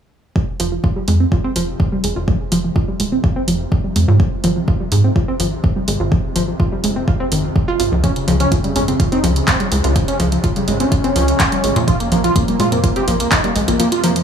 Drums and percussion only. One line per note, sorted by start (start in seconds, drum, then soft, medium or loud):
0.36 kick loud
0.60 open hi-hat loud
0.84 kick loud
1.08 open hi-hat medium
1.32 kick loud
1.56 open hi-hat loud
1.80 kick loud
2.04 open hi-hat medium
2.28 kick loud
2.52 open hi-hat loud
2.76 kick loud
3.00 open hi-hat medium
3.24 kick loud
3.48 open hi-hat loud
3.72 kick loud
3.96 open hi-hat medium
4.20 kick loud
4.44 open hi-hat loud
4.68 kick loud
4.92 open hi-hat medium
5.16 kick loud
5.40 open hi-hat loud
5.64 kick loud
5.88 open hi-hat loud
6.12 kick loud
6.36 open hi-hat loud
6.60 kick loud
6.84 open hi-hat medium
7.08 kick loud
7.32 open hi-hat loud
7.56 kick loud
7.80 open hi-hat medium
8.04 kick loud
8.04 closed hi-hat medium
8.16 closed hi-hat soft
8.28 open hi-hat medium
8.40 closed hi-hat soft
8.52 kick loud
8.52 closed hi-hat medium
8.64 closed hi-hat soft
8.76 open hi-hat medium
8.88 closed hi-hat soft
9.00 kick loud
9.00 closed hi-hat medium
9.12 closed hi-hat soft
9.24 open hi-hat loud
9.36 closed hi-hat soft
9.48 kick loud
9.48 clap loud
9.48 closed hi-hat medium
9.60 closed hi-hat soft
9.72 open hi-hat loud
9.84 closed hi-hat soft
9.96 kick loud
9.96 closed hi-hat medium
10.08 closed hi-hat soft
10.20 open hi-hat medium
10.32 closed hi-hat soft
10.44 kick loud
10.44 closed hi-hat medium
10.56 closed hi-hat soft
10.68 open hi-hat medium
10.80 closed hi-hat soft
10.92 kick loud
10.92 closed hi-hat medium
11.04 closed hi-hat soft
11.16 open hi-hat loud
11.28 closed hi-hat soft
11.40 kick loud
11.40 clap loud
11.40 closed hi-hat medium
11.52 closed hi-hat soft
11.64 open hi-hat medium
11.76 closed hi-hat soft
11.88 kick loud
11.88 closed hi-hat medium
12.00 closed hi-hat soft
12.12 open hi-hat medium
12.24 closed hi-hat soft
12.36 kick loud
12.36 closed hi-hat medium
12.48 closed hi-hat soft
12.60 open hi-hat medium
12.72 closed hi-hat soft
12.84 kick loud
12.84 closed hi-hat medium
12.96 closed hi-hat soft
13.08 open hi-hat loud
13.20 closed hi-hat soft
13.32 kick loud
13.32 clap loud
13.32 closed hi-hat medium
13.44 closed hi-hat soft
13.56 open hi-hat medium
13.68 closed hi-hat soft
13.80 closed hi-hat medium
13.92 closed hi-hat soft
14.04 open hi-hat loud
14.16 closed hi-hat soft